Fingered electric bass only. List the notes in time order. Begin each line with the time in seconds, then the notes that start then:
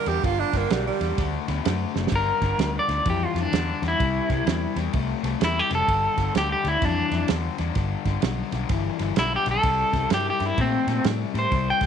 0.07 E2
0.24 G1
0.54 G1
0.71 B1
1.01 E2
1.18 D2
1.48 D2
1.66 F#2
1.96 F#1
2.12 G1
2.42 G1
2.59 D2
2.88 D2
3.06 F2
3.35 F2
3.53 E2
3.82 E2
4.00 C2
4.30 C2
4.46 E2
4.76 E2
4.94 C2
5.23 C2
5.41 E2
5.71 F1
5.88 G1
6.18 G1
6.35 D2
6.64 D2
6.82 F2
7.12 F2
7.30 E2
7.59 E2
7.76 G1
8.06 G1
8.23 B1
8.52 B1
8.70 G1
9.00 G1
9.17 B1
9.46 B1
9.64 C2
9.93 C2
10.11 G2
10.40 G2
10.58 A#2
10.87 A#2
11.05 A2
11.34 A2
11.52 C2
11.81 C2